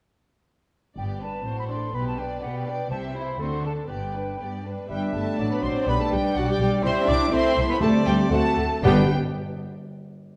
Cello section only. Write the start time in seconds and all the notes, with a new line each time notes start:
0.97 G2
1.45 A2
1.95 B2
2.42 B2
2.90 C3
3.38 D3
3.88 G2
4.38 G2
4.89 G3
5.14 A3
5.50 B3
5.62 C4
5.87 B3
5.99 A3
6.11 G3
6.35 F#3
6.47 G3
6.58 G3
6.83 C4
7.06 D4
7.31 C4
7.69 B3
7.80 A3
8.06 G3
8.32 A3
8.85 G3